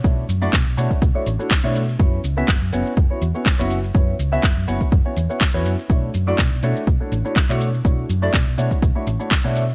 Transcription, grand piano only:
0.04 A3 D4 E4 F#4 C#5
0.41 A3 D4 E4 F#4 D5
0.77 A3 D4 E4 F#4 C#5
1.15 A3 D4 E4 F#4 C#5
1.39 A3 D4 E4 F#4 C#5
1.63 A3 D4 E4 F#4 C#5
1.99 B3 C#4 E4 F#4 C#5
2.37 B3 C#4 E4 F#4 E5
2.72 B3 C#4 E4 F#4 C#5
3.10 B3 C#4 E4 F#4 C#5
3.34 B3 C#4 E4 F#4 C#5
3.59 B3 C#4 E4 F#4 C#5
3.94 B3 C#4 E4 F#4 C#5
4.32 B3 C#4 E4 F#4 E5
4.67 B3 C#4 E4 F#4 C#5
5.05 B3 C#4 E4 F#4 C#5
5.29 B3 C#4 E4 F#4 C#5
5.54 B3 C#4 E4 F#4 C#5
5.89 A3 D4 E4 F#4 C#5
6.27 A3 D4 E4 F#4 D5
6.63 A3 D4 E4 F#4 C#5
7.00 A3 D4 E4 F#4 C#5
7.25 A3 D4 E4 F#4 C#5
7.49 A3 D4 E4 F#4 C#5
7.85 A3 D4 E4 F#4 C#5
8.22 A3 D4 E4 F#4 D5
8.58 A3 D4 E4 F#4 C#5
8.95 A3 D4 E4 F#4 C#5
9.19 A3 D4 E4 F#4 C#5
9.44 A3 D4 E4 F#4 C#5

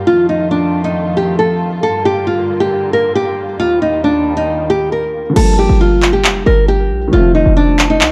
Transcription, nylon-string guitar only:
0.07 F4
0.29 D#4
0.51 D4
0.84 D#4
1.17 G4
1.39 A4
1.83 A4
2.05 G4
2.27 F4
2.60 G4
2.93 A#4
3.15 G4
3.60 F4
3.82 D#4
4.04 D4
4.37 D#4
4.70 G4
4.92 A#4
5.36 A4
5.59 G4
5.81 F4
6.13 G4
6.46 A#4
6.68 G4
7.13 F4
7.35 D#4
7.57 D4
7.90 D#4

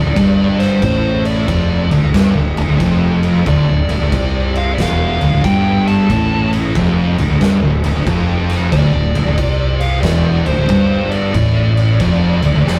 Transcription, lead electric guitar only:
Already playing: D5
0.58 C5
0.83 C5
1.26 D5
3.48 D5
4.58 F5
4.75 D5
4.82 F5
5.44 G5
5.88 A5
8.72 D5
9.81 F5
10.02 D5
10.46 C5
11.11 D5

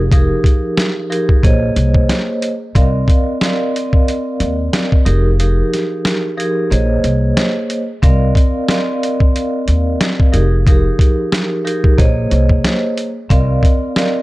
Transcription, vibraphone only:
0.13 F3 D#4 G4 G#4 A#4
1.10 F3 D#4 G4 G#4 A#4
1.43 A#3 G#4 C5 C#5 D#5
2.75 C4 A#4 D5 D#5 F5
3.42 C4 A#4 D5 D#5 F5
5.05 F3 D#4 G4 G#4 A#4
5.40 F3 D#4 G4 G#4 A#4
6.37 F3 D#4 G4 G#4 A#4
6.70 A#3 G#4 C5 C#5 D#5
8.02 C4 A#4 D5 D#5 F5
8.69 C4 A#4 D5 D#5 F5
10.32 F3 D#4 G4 G#4 A#4
10.68 F3 D#4 G4 G#4 A#4
11.65 F3 D#4 G4 G#4 A#4
11.98 A#3 G#4 C5 C#5 D#5
13.30 C4 A#4 D5 D#5 F5
13.96 C4 A#4 D5 D#5 F5

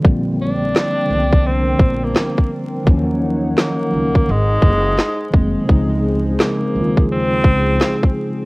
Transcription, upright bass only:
0.05 A#1
1.10 C2
1.80 A#1
2.87 D#2
3.93 C#2
4.29 G#1
4.62 F#1
5.33 F1
5.69 C#2
6.76 D#2
7.45 C#2

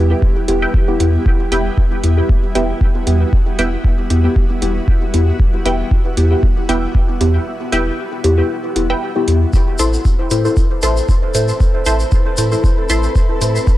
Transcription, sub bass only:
Already playing: E2
0.48 E1
1.00 E2
1.52 E1
2.03 E2
2.55 E1
3.07 E2
3.59 E1
4.10 E2
4.62 E1
5.14 E2
5.65 E1
6.17 E2
6.69 E1
7.21 E2
7.72 E1
8.24 E2
8.76 E1
9.28 E2
9.79 A1
10.31 A2
10.83 A1
11.35 A2
11.86 A1
12.38 A2
12.90 A1
13.41 A2

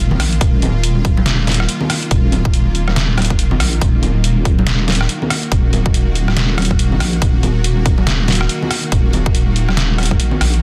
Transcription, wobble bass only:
Already playing: D#1
0.11 F1
0.20 A#1
0.41 D#1
2.11 D#1
3.52 F1
3.60 A#1
3.81 D#1
5.52 D#1
6.92 F1
7.01 A#1
7.22 D#1
8.92 D#1
10.41 A#1

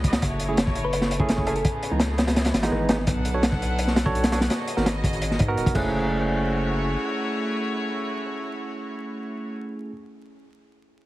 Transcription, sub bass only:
Already playing: C#2
0.22 F#1
1.91 C#2
2.54 G#1
2.72 G#1
3.07 B1
4.77 G#1
5.40 G#2
5.57 D#1
5.75 F#1

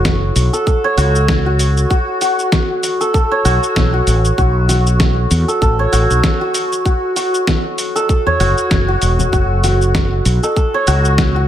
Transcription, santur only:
Already playing: E4 F#4 A4 C#5
0.53 A4
0.67 A4
0.84 C#5
0.97 F#4
1.46 F#4
1.90 F#4
2.21 F#4
3.01 A4
3.14 A4
3.31 C#5
3.45 F#4
3.94 F#4
4.38 F#4
4.69 F#4
5.48 A4
5.62 A4
5.79 C#5
5.92 F#4
6.41 F#4
6.86 F#4
7.16 F#4
7.96 A4
8.09 A4
8.27 C#5
8.40 F#4
8.88 F#4
9.33 F#4
9.64 F#4
10.43 A4
10.57 A4
10.74 C#5
10.87 F#4
11.36 F#4

